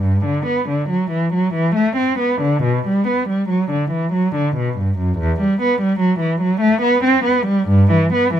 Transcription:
0.02 0.24 G2 medium
0.26 0.47 D3 medium
0.46 0.68 B3 soft
0.69 0.90 D3 soft
0.90 1.12 F#3 soft
1.11 1.33 E3 soft
1.34 1.55 F#3 soft
1.55 1.76 E3 medium
1.76 1.98 A3 soft
1.97 2.20 C4 soft
2.20 2.42 B3 soft
2.42 2.65 D3 soft
2.64 2.86 B2 soft
2.88 3.09 G3 medium
3.08 3.29 B3 soft
3.29 3.50 G3 soft
3.49 3.71 F#3 soft
3.71 3.92 D3 soft
3.91 4.13 E3 soft
4.13 4.34 F#3 medium
4.35 4.56 D3 soft
4.57 4.77 B2 soft
4.78 4.98 G2 soft
4.99 5.19 F#2 soft
5.19 5.39 E2 medium
5.41 5.61 G3 medium
5.62 5.81 B3 medium
5.82 6.01 G3 medium
6.00 6.21 F#3 medium
6.20 6.41 E3 soft
6.42 6.62 F#3 medium
6.61 6.82 A3 medium
6.82 7.03 B3 medium
7.04 7.25 C4 medium
7.25 7.47 B3 medium
7.47 7.69 G3 medium
7.69 7.91 G2 medium
7.92 8.12 E3 medium
8.13 8.33 B3 medium
8.34 8.40 E3 medium

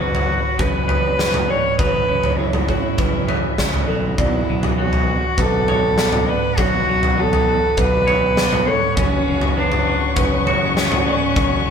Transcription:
0.00 0.37 F#1 medium
0.00 1.48 F#3 medium
0.00 0.58 C#4 medium
0.00 0.28 F#4 medium
0.00 0.63 F#4 medium
0.00 4.14 B4 medium
0.00 0.58 B4 medium
0.00 0.88 C#5 medium
0.00 4.14 C#5 medium
0.00 1.74 F#5 medium
0.15 floor tom medium
0.29 2.69 F#4 medium
0.58 1.50 F#1 medium
0.58 1.18 C#4 medium
0.58 0.89 B4 medium
0.58 1.52 B4 medium
0.58 kick medium
0.58 floor tom medium
0.88 3.02 B4 medium
0.88 1.49 C#5 medium
0.88 floor tom medium
1.19 2.08 C#4 medium
1.19 snare medium
1.34 floor tom medium
1.34 mid tom medium
1.49 1.78 F#3 medium
1.49 1.79 C#5 medium
1.49 1.79 D5 medium
1.78 2.02 F#1 medium
1.78 2.38 F#3 medium
1.78 2.41 B4 loud
1.78 2.37 C#5 medium
1.78 4.16 E5 medium
1.78 kick loud
1.78 floor tom medium
2.08 2.77 F#1 medium
2.08 2.99 C#4 medium
2.24 floor tom medium
2.38 3.88 F#3 medium
2.38 3.89 E4 medium
2.38 2.98 C#5 medium
2.53 floor tom medium
2.53 mid tom medium
2.68 5.08 F#4 medium
2.68 kick medium
2.68 mid tom medium
2.98 3.44 F#1 medium
2.98 3.58 C#4 medium
2.98 3.28 B4 medium
2.98 kick loud
2.98 floor tom medium
3.28 5.68 B4 medium
3.28 3.88 C#5 medium
3.28 floor tom medium
3.58 3.86 C#2 medium
3.58 4.22 C#4 medium
3.58 kick medium
3.58 snare medium
3.74 floor tom medium
3.88 4.15 B1 medium
3.88 4.49 F#3 medium
3.88 4.18 A4 medium
4.18 4.41 B1 medium
4.18 5.68 B2 medium
4.18 4.74 E4 medium
4.18 11.70 B4 medium
4.18 4.78 D5 medium
4.18 8.94 F#5 medium
4.18 kick medium
4.18 floor tom medium
4.49 5.16 B1 medium
4.49 6.88 F#3 medium
4.63 floor tom medium
4.78 6.28 B3 medium
4.78 5.41 F#4 medium
4.78 5.38 C#5 medium
4.93 floor tom medium
5.08 7.48 F#4 medium
5.38 6.28 B1 medium
5.38 5.98 D4 medium
5.38 6.31 A4 medium
5.38 5.68 B4 medium
5.38 kick loud
5.38 floor tom medium
5.68 6.28 C#5 medium
5.68 7.21 C#5 medium
5.68 floor tom medium
5.98 7.48 D4 medium
5.98 snare medium
6.13 floor tom medium
6.13 mid tom medium
6.28 7.17 B3 medium
6.28 6.60 B4 medium
6.28 6.58 D5 medium
6.57 6.80 B1 medium
6.57 8.08 B2 medium
6.57 7.22 F#4 medium
6.57 7.16 C#5 medium
6.57 kick loud
6.57 floor tom medium
6.88 7.56 B1 medium
6.88 9.27 F#3 medium
7.03 floor tom medium
7.17 8.67 B3 medium
7.17 7.82 A4 loud
7.17 7.77 C#5 medium
7.33 floor tom medium
7.48 9.87 F#4 medium
7.77 8.68 B1 medium
7.77 8.36 D4 medium
7.77 8.07 B4 medium
7.77 8.70 B4 loud
7.77 kick loud
7.77 floor tom medium
8.07 10.20 C#5 medium
8.07 8.67 C#5 medium
8.07 floor tom medium
8.37 8.97 D4 medium
8.37 snare medium
8.53 floor tom medium
8.53 mid tom medium
8.67 9.30 B3 medium
8.67 8.97 A4 medium
8.67 8.98 C#5 loud
8.97 9.20 F#1 medium
8.97 10.46 F#2 medium
8.97 9.61 C#4 loud
8.97 9.57 C#5 medium
8.97 11.70 C#5 medium
8.97 11.70 F#5 medium
8.97 11.70 C#6 medium
8.97 kick loud
8.97 floor tom medium
9.27 9.95 F#1 medium
9.27 10.77 C#3 medium
9.41 floor tom medium
9.57 11.07 F#3 medium
9.57 10.17 D4 medium
9.57 10.16 B4 medium
9.72 floor tom medium
9.87 11.70 C#4 medium
10.16 11.07 F#1 medium
10.16 10.75 B3 medium
10.16 11.70 C#4 medium
10.16 10.47 B4 medium
10.16 kick loud
10.16 floor tom medium
10.46 11.70 F#4 medium
10.46 11.06 C#5 medium
10.46 floor tom medium
10.77 11.70 B3 medium
10.77 snare medium
10.92 floor tom medium
10.92 mid tom medium
11.05 11.70 F#3 medium
11.05 11.36 D5 medium
11.36 11.59 F#1 medium
11.36 11.70 F#2 medium
11.36 11.70 C#5 medium
11.36 kick loud
11.36 floor tom medium
11.66 11.70 F#1 medium
11.66 11.70 C#3 medium

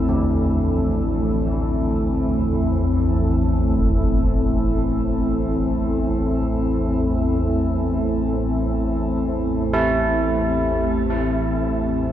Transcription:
0.00 12.12 A1 medium
0.00 12.12 E2 medium
0.00 12.12 A3 medium
0.00 12.12 C4 medium
0.00 12.12 E4 medium
0.09 5.62 D3 medium
3.78 concert bass drum medium
9.73 12.12 E4 medium

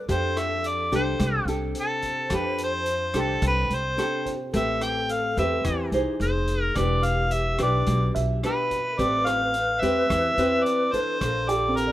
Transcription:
0.00 0.32 A4 soft
0.08 0.88 F2 medium
0.08 1.17 F3 medium
0.08 0.88 D4 medium
0.08 0.88 G4 medium
0.08 1.48 A4 loud
0.08 0.88 A4 medium
0.08 0.40 C5 medium
0.08 kick medium
0.08 closed hi-hat medium
0.37 0.69 E5 medium
0.37 cross-stick medium
0.37 closed hi-hat soft
0.64 0.94 D5 medium
0.64 closed hi-hat soft
0.92 1.18 C2 medium
0.92 1.43 D4 medium
0.92 1.43 G4 medium
0.92 1.44 A4 medium
0.92 1.32 C5 medium
0.92 kick soft
0.92 closed hi-hat soft
1.20 1.45 C2 medium
1.20 2.28 C3 medium
1.20 kick medium
1.20 cross-stick medium
1.20 closed hi-hat medium
1.32 1.46 B4 medium
1.45 1.72 C2 medium
1.45 2.27 D4 medium
1.45 2.27 G4 medium
1.45 2.27 A4 medium
1.45 closed hi-hat soft
1.74 4.21 C5 loud
1.74 closed hi-hat soft
1.79 2.36 A4 medium
2.02 kick soft
2.02 closed hi-hat soft
2.30 3.10 F2 medium
2.30 3.40 F3 medium
2.30 2.86 D4 medium
2.30 2.87 G4 medium
2.30 2.87 A4 medium
2.30 kick medium
2.30 cross-stick medium
2.30 closed hi-hat medium
2.35 2.61 B4 medium
2.58 closed hi-hat medium
2.64 3.22 C5 loud
2.86 closed hi-hat soft
3.14 3.40 C2 medium
3.14 3.93 D4 medium
3.14 3.94 G4 medium
3.14 3.94 A4 medium
3.14 kick soft
3.14 cross-stick medium
3.14 closed hi-hat soft
3.20 3.45 A4 medium
3.42 3.68 C2 loud
3.42 4.51 C3 medium
3.42 kick medium
3.42 closed hi-hat medium
3.47 3.76 B4 loud
3.70 3.96 C2 medium
3.70 closed hi-hat soft
3.75 4.28 C5 loud
3.98 4.34 D4 medium
3.98 4.34 G4 medium
3.98 4.34 A4 medium
3.98 cross-stick medium
3.98 closed hi-hat soft
4.25 4.77 C5 soft
4.25 kick soft
4.25 closed hi-hat soft
4.52 5.33 A1 medium
4.52 5.62 A3 medium
4.52 5.32 C4 medium
4.52 5.33 G4 medium
4.52 5.60 A4 loud
4.52 5.33 B4 medium
4.52 kick medium
4.52 closed hi-hat medium
4.56 4.85 E5 medium
4.81 5.13 G5 loud
4.81 cross-stick medium
4.81 closed hi-hat soft
5.09 5.38 F5 medium
5.09 closed hi-hat soft
5.37 5.63 E2 loud
5.37 5.88 C4 medium
5.37 5.89 G4 medium
5.37 5.89 B4 medium
5.37 5.90 E5 medium
5.37 kick soft
5.37 closed hi-hat soft
5.64 5.91 E2 medium
5.64 6.18 E3 medium
5.64 6.16 G4 loud
5.64 kick medium
5.64 cross-stick medium
5.64 closed hi-hat medium
5.91 6.05 C2 medium
5.91 6.72 D#4 medium
5.91 6.72 G#4 medium
5.91 6.72 C5 medium
5.91 closed hi-hat soft
6.20 6.72 F1 medium
6.20 6.77 G#4 loud
6.20 6.63 C5 medium
6.20 closed hi-hat soft
6.48 kick soft
6.48 closed hi-hat soft
6.63 6.79 A#4 medium
6.75 7.55 E1 medium
6.75 7.85 E3 medium
6.75 7.31 D4 medium
6.75 8.71 G4 medium
6.75 7.32 G4 medium
6.75 7.32 B4 medium
6.75 7.06 D5 medium
6.75 kick medium
6.75 cross-stick medium
6.75 closed hi-hat medium
7.03 7.34 F5 loud
7.03 closed hi-hat soft
7.31 7.60 E5 loud
7.31 closed hi-hat soft
7.58 7.85 B1 loud
7.58 8.38 D4 medium
7.58 8.38 G4 medium
7.58 8.39 B4 medium
7.58 kick soft
7.58 cross-stick medium
7.58 closed hi-hat soft
7.63 8.13 D5 medium
7.86 8.13 B1 loud
7.86 8.96 B2 medium
7.86 kick medium
7.86 closed hi-hat medium
8.15 8.41 B1 medium
8.15 9.22 E5 medium
8.15 closed hi-hat soft
8.43 8.79 D4 medium
8.43 8.79 G4 medium
8.43 8.79 B4 medium
8.43 9.01 B4 medium
8.43 cross-stick medium
8.43 closed hi-hat soft
8.71 kick soft
8.71 closed hi-hat soft
8.91 8.99 A#4 medium
8.97 9.78 A1 medium
8.97 10.07 A3 medium
8.97 9.54 C4 medium
8.97 9.54 G4 medium
8.97 11.20 B4 loud
8.97 9.54 B4 medium
8.97 9.28 D5 loud
8.97 kick medium
8.97 closed hi-hat medium
9.26 11.02 B4 medium
9.26 9.82 F5 loud
9.26 cross-stick medium
9.26 closed hi-hat soft
9.54 closed hi-hat soft
9.81 10.08 E2 medium
9.81 10.33 C4 medium
9.81 10.33 G4 medium
9.81 10.34 B4 medium
9.81 10.66 E5 loud
9.81 kick soft
9.81 closed hi-hat soft
10.09 10.36 E2 medium
10.09 11.18 E3 medium
10.09 kick medium
10.09 cross-stick medium
10.09 closed hi-hat medium
10.37 10.63 E2 medium
10.37 10.89 C4 medium
10.37 10.89 G4 medium
10.37 10.89 B4 medium
10.37 closed hi-hat soft
10.65 10.94 D5 medium
10.65 closed hi-hat soft
10.93 11.92 D4 medium
10.93 11.92 A4 medium
10.93 11.51 C5 medium
10.93 11.92 C5 medium
10.93 kick soft
10.93 closed hi-hat soft
11.20 11.92 A#1 medium
11.20 11.92 A#3 medium
11.20 11.92 A4 loud
11.20 kick medium
11.20 cross-stick medium
11.20 closed hi-hat medium
11.49 11.92 G4 medium
11.49 11.78 D5 medium
11.49 closed hi-hat soft
11.68 11.92 C4 soft
11.77 11.92 A#4 medium
11.77 closed hi-hat soft
11.87 11.92 D5 soft

